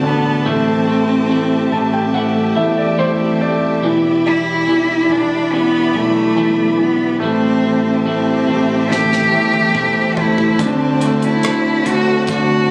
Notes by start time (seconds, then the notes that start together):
Already playing: A1 D3 A3 F#4 A4 D5 A5
0.03 D3 B3
0.45 A1 A2 E3 G3 A3 C4 E4 G4 E5
0.49 C4
0.87 G3 A3 C4 E4
1.29 A2 E3 G3 A3 C4 E4
1.71 A1 G3 A3 C4 E4 A5
1.93 G5
2.13 E3 G3 A3 C4 E4 F#5
2.55 E2 G3 A3 C4 E4 E5
2.78 D5
2.98 A2 E3 G3 A3 C4 E4 C5
3.41 A3 D5
3.82 E1 E2 B2 E3 G3 D4 E4 D5 B5
4.24 E3 G3 D4 E4
4.67 E2 B2 E3 G3 D4 E4
5.09 E1 E3 G3 D4 E4
5.13 E3
5.52 E3 G3 B3 D4 E4
5.94 B1 E3 G3 A3 D4 E4
6.36 E2 B2 E3 G3 D4 E4
6.77 E3
6.81 B3
7.20 A1 A2 E3 G3 A3 C4 G4 C5 E5 A5
7.24 E4
7.63 G3 A3 C4 E4
8.05 A2 E3 G3 A3 C4 E4
8.47 A1 G3 A3 C4 E4
8.89 E3 G3 A3 C4 E4 G4, snare
9.12 snare
9.31 E2 G3 A3 C4 E4
9.54 high tom
9.74 A2 E3 G3 A3 C4 E4, mid tom
10.17 A3 E4, floor tom
10.38 floor tom
10.59 D2 D3 A3 C4 F#4 D5, kick, closed hi-hat
11.00 A3 C4 F#4, closed hi-hat
11.22 E4, closed hi-hat
11.43 D3 A3 C4 F#4, cross-stick, closed hi-hat
11.85 D2 A3 C4 F#4, cross-stick, closed hi-hat
12.27 D3 A3 C4 F#4, kick, closed hi-hat